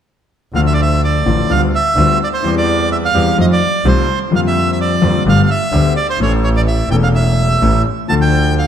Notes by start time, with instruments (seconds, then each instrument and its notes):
0.53 double bass D2, grand piano D2 D3 F3 A3, bandoneon F5
0.58 grand piano F4
0.67 bandoneon E5
0.74 bandoneon D5
0.82 bandoneon E5
1.04 bandoneon D5
1.25 double bass A1, grand piano A1 A2 D3 F3 A3 F4
1.49 double bass D2, grand piano D2 D3 G3 B3 F4, bandoneon F5
1.75 bandoneon E5
1.96 double bass D2, grand piano D2 D3 G3 B3 F4
2.24 bandoneon D5
2.34 bandoneon C5
2.42 double bass E2, grand piano E2 E3 G3 C4 G4
2.58 bandoneon D5
2.92 bandoneon E5
3.05 bandoneon F5
3.14 double bass E2, grand piano E2 E3 G3 C4 G4
3.37 double bass F2, grand piano F2 D#3 F3 A3 C4 F4, bandoneon D#5
3.53 bandoneon D5
3.84 double bass C2, grand piano C2 C3 D#3 A3 C4 F4, bandoneon C5
4.30 double bass F2, grand piano F2 D3 F3 G3 A#3
4.34 grand piano F4, bandoneon F5
4.47 bandoneon E5
4.72 bandoneon E5
4.81 bandoneon D5
5.02 double bass F2, grand piano F2 D3 F3 G3 A#3 F4
5.25 double bass G1, grand piano G1 G2 D3 A3 B3 G4, bandoneon F5
5.43 bandoneon F5
5.51 bandoneon E5
5.72 double bass D2, grand piano D2 D3 A3 B3 G4
5.96 bandoneon D5
6.10 bandoneon C5
6.18 double bass A1, grand piano A1 A2 E3 A3 C#4, bandoneon C#5
6.22 grand piano A4
6.44 bandoneon C#5
6.57 bandoneon D5
6.68 bandoneon E5
6.89 double bass E1, grand piano E1 E2 E3 A3 C#4, bandoneon G5
6.93 grand piano A4
7.03 bandoneon F5
7.15 bandoneon E5
7.62 double bass A1, grand piano A1 A2 E3 A3 C#4 A4
8.08 double bass D2, grand piano D2 D3 F3 A3 D4 A4, bandoneon A5
8.22 bandoneon G5
8.59 bandoneon F5